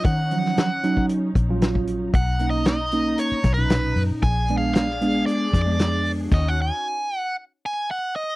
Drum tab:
CC |----------------|----------------|----------------|x---------------|
HH |x-x-x-x-x-x-x-x-|x-x-x-x-x-x-x-o-|x-x-x-x-x-x-x-o-|x---------------|
SD |---oo-------o---|----o-----o-o---|----oo----o-o---|----------------|
BD |o------o--o--o--|o---------o-----|o---------o-----|o---------------|